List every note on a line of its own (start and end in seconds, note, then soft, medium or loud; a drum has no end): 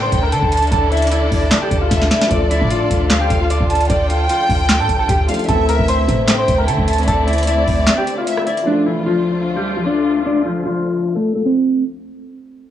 0.00 0.11 A2 loud
0.00 5.45 D3 medium
0.00 2.24 E3 medium
0.00 2.26 A3 medium
0.00 2.27 D4 medium
0.00 5.45 D4 medium
0.00 2.28 E4 medium
0.00 2.29 A4 medium
0.00 5.45 A4 medium
0.00 0.22 C5 medium
0.00 0.49 G5 medium
0.00 0.21 C6 medium
0.12 0.34 D2 loud
0.12 kick loud
0.12 closed hi-hat medium
0.23 0.32 A#4 medium
0.23 0.31 A#5 medium
0.32 0.42 D3 loud
0.32 0.70 A4 medium
0.32 0.70 A5 medium
0.32 closed hi-hat medium
0.43 0.71 D2 loud
0.43 kick medium
0.52 0.71 A5 medium
0.52 closed hi-hat medium
0.57 closed hi-hat medium
0.62 closed hi-hat medium
0.67 closed hi-hat soft
0.72 1.29 D2 loud
0.72 0.91 A4 medium
0.72 1.87 D5 medium
0.72 0.91 A5 medium
0.72 kick loud
0.72 closed hi-hat medium
0.92 1.11 E4 medium
0.92 1.11 E5 medium
0.92 closed hi-hat soft
0.97 closed hi-hat medium
1.02 closed hi-hat medium
1.07 closed hi-hat medium
1.12 1.59 E4 medium
1.12 1.59 E5 medium
1.12 closed hi-hat medium
1.32 1.51 D2 loud
1.32 kick medium
1.32 open hi-hat medium
1.51 snare loud
1.51 clap loud
1.51 closed hi-hat loud
1.62 1.81 G4 medium
1.62 1.81 G5 medium
1.71 1.90 D2 loud
1.71 kick loud
1.71 closed hi-hat medium
1.82 2.10 F4 medium
1.82 2.09 F5 medium
1.91 2.10 D2 loud
1.91 2.10 E5 loud
1.91 kick loud
1.91 snare medium
1.91 closed hi-hat medium
2.02 snare medium
2.11 2.30 E4 medium
2.11 2.30 D5 medium
2.11 2.30 E5 medium
2.11 snare loud
2.11 closed hi-hat medium
2.21 snare loud
2.21 closed hi-hat medium
2.27 5.23 F3 medium
2.27 5.24 A3 medium
2.31 2.60 D2 loud
2.31 5.25 D4 medium
2.31 5.46 F4 medium
2.31 5.26 F4 medium
2.31 3.06 D5 loud
2.31 2.50 D5 medium
2.31 2.50 D6 medium
2.31 kick loud
2.31 closed hi-hat medium
2.35 5.27 A4 medium
2.51 2.70 E4 medium
2.51 2.69 E5 medium
2.51 closed hi-hat medium
2.61 2.89 A2 loud
2.61 kick medium
2.70 3.18 F4 medium
2.70 3.18 F5 medium
2.70 closed hi-hat medium
2.90 3.29 D2 loud
2.90 kick medium
2.90 closed hi-hat medium
3.10 3.66 F5 medium
3.10 snare loud
3.10 clap loud
3.10 closed hi-hat medium
3.21 3.40 G4 medium
3.21 3.39 G5 medium
3.30 3.59 D2 loud
3.30 kick loud
3.30 closed hi-hat medium
3.40 3.50 F4 medium
3.40 3.49 F5 medium
3.50 3.87 D5 medium
3.50 3.88 D6 medium
3.50 closed hi-hat medium
3.61 3.89 D2 loud
3.61 kick medium
3.70 3.89 A5 medium
3.70 closed hi-hat medium
3.75 closed hi-hat medium
3.81 closed hi-hat medium
3.85 closed hi-hat soft
3.90 4.28 D2 loud
3.90 4.09 D5 loud
3.90 5.25 G5 loud
3.90 4.09 D6 medium
3.90 kick loud
3.90 closed hi-hat medium
4.10 4.29 F4 medium
4.10 4.28 F5 medium
4.10 closed hi-hat medium
4.29 4.77 F4 medium
4.29 4.77 F5 medium
4.29 closed hi-hat medium
4.49 4.81 D2 loud
4.49 kick medium
4.49 open hi-hat medium
4.69 snare loud
4.69 clap medium
4.69 closed hi-hat loud
4.80 4.89 A2 loud
4.80 4.99 A4 medium
4.80 4.98 A5 medium
4.89 5.08 C2 loud
4.89 kick loud
4.89 closed hi-hat medium
4.99 5.09 A4 medium
4.99 5.08 A5 medium
5.08 5.28 D2 loud
5.08 5.46 G4 medium
5.08 5.46 G5 medium
5.08 kick loud
5.08 closed hi-hat medium
5.27 5.48 F3 soft
5.27 5.45 A3 soft
5.27 5.49 D4 soft
5.27 5.49 F4 medium
5.27 5.48 F5 medium
5.27 closed hi-hat medium
5.27 open hi-hat medium
5.31 5.50 A4 medium
5.31 closed hi-hat medium
5.39 closed hi-hat medium
5.44 8.60 E3 medium
5.44 8.61 A3 medium
5.44 closed hi-hat soft
5.49 5.78 D2 loud
5.49 8.63 D3 medium
5.49 8.63 A3 medium
5.49 8.63 C4 medium
5.49 8.63 E4 medium
5.49 8.64 E4 medium
5.49 5.68 A4 medium
5.49 6.24 E5 loud
5.49 5.67 A5 loud
5.49 kick loud
5.49 closed hi-hat medium
5.53 8.65 A4 medium
5.69 5.88 A#4 medium
5.69 5.87 A#5 medium
5.69 closed hi-hat medium
5.79 6.07 D2 loud
5.79 kick medium
5.88 6.36 C5 medium
5.88 6.36 C6 medium
5.88 closed hi-hat medium
6.08 6.46 A2 loud
6.08 kick medium
6.08 closed hi-hat medium
6.28 6.84 G5 medium
6.28 snare loud
6.28 clap loud
6.28 closed hi-hat loud
6.38 6.58 C5 medium
6.38 6.57 C6 medium
6.48 6.69 D2 loud
6.48 kick loud
6.48 closed hi-hat medium
6.58 6.68 A#4 medium
6.58 6.67 A#5 medium
6.67 6.78 D3 loud
6.67 7.05 A4 medium
6.67 7.05 A5 medium
6.67 closed hi-hat medium
6.78 7.06 D2 loud
6.78 kick medium
6.88 7.07 A5 medium
6.88 closed hi-hat medium
6.93 closed hi-hat medium
6.98 closed hi-hat medium
7.03 closed hi-hat soft
7.08 7.65 D2 loud
7.08 7.27 A4 medium
7.08 8.23 D5 loud
7.08 7.26 A5 medium
7.08 kick loud
7.08 closed hi-hat medium
7.27 7.46 E4 medium
7.27 7.46 E5 medium
7.27 closed hi-hat medium
7.33 closed hi-hat medium
7.38 closed hi-hat medium
7.43 closed hi-hat medium
7.47 7.95 E4 medium
7.47 7.95 E5 medium
7.47 closed hi-hat medium
7.67 7.87 D2 loud
7.67 kick loud
7.67 open hi-hat medium
7.87 snare loud
7.87 clap medium
7.87 closed hi-hat loud
7.97 8.17 G4 medium
7.97 8.16 G5 medium
8.07 closed hi-hat medium
8.18 8.46 F4 medium
8.18 8.45 F5 medium
8.27 8.46 E5 medium
8.27 closed hi-hat medium
8.37 cross-stick medium
8.46 8.66 E4 medium
8.46 8.66 D5 medium
8.46 8.65 E5 medium
8.46 closed hi-hat medium
8.57 closed hi-hat medium
8.63 11.78 F3 medium
8.63 11.80 A3 medium
8.67 11.81 D2 medium
8.67 11.81 D3 medium
8.67 11.81 A3 medium
8.67 8.85 D4 loud
8.67 11.81 D4 medium
8.67 11.81 F4 medium
8.67 8.86 D5 medium
8.71 11.83 F4 medium
8.86 9.05 E3 medium
8.86 9.05 E4 medium
9.06 9.54 F3 medium
9.06 9.54 F4 medium
9.56 9.76 G3 medium
9.56 9.75 G4 medium
9.77 9.86 F3 medium
9.77 9.85 F4 medium
9.86 10.23 D4 medium
9.86 10.24 D5 medium
10.26 10.44 D4 medium
10.26 10.45 D5 medium
10.45 10.64 F3 medium
10.45 10.64 F4 medium
10.65 11.13 F3 medium
10.65 11.13 F4 medium
11.15 11.35 A3 medium
11.15 11.34 A4 medium
11.35 11.45 A3 medium
11.35 11.44 A4 medium
11.45 11.82 C4 medium
11.45 11.83 C5 medium